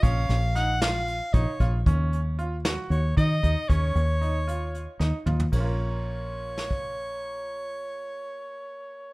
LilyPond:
<<
  \new Staff \with { instrumentName = "Soprano saxophone" } { \time 7/8 \key bes \minor \tempo 4 = 115 f''4 ges''8 f''4 des''8. r16 | r2 des''8 ees''4 | des''2~ des''8 r4 | des''2.~ des''8~ |
des''2.~ des''8 | }
  \new Staff \with { instrumentName = "Grand piano" } { \time 7/8 \key bes \minor des'4 ees'8 f'4 ees'8 f'8 | des'4 f'8 ges'4 ees'8 ees'8 | des'4 ees'8 f'4 ees'8 f'8 | <bes des' f' bes'>2.~ <bes des' f' bes'>8~ |
<bes des' f' bes'>2.~ <bes des' f' bes'>8 | }
  \new Staff \with { instrumentName = "Fingered electric bass" } { \clef bass \time 7/8 \key bes \minor bes,,8 bes,,2 bes,,16 r16 bes,,8 | ees,2 ees,8 ees8 ees,16 r16 | ees,8 ees,2 ees,16 r16 ees,8 | bes,,2.~ bes,,8~ |
bes,,2.~ bes,,8 | }
  \new DrumStaff \with { instrumentName = "Drums" } \drummode { \time 7/8 <hh bd>8 <hh sn>8 <hh sn>8 <hh sn>8 hh8 <hh bd>8 <hh bd>8 | <hh bd>8 hh8 hh8 <hh sn>8 hh8 <hh bd>8 <hh bd>8 | <hh bd>8 hh8 hh8 hh8 hh8 sn8 toml16 tomfh16 | <bd cymr>4. r8 sn16 bd16 r4 |
r4. r4 r4 | }
>>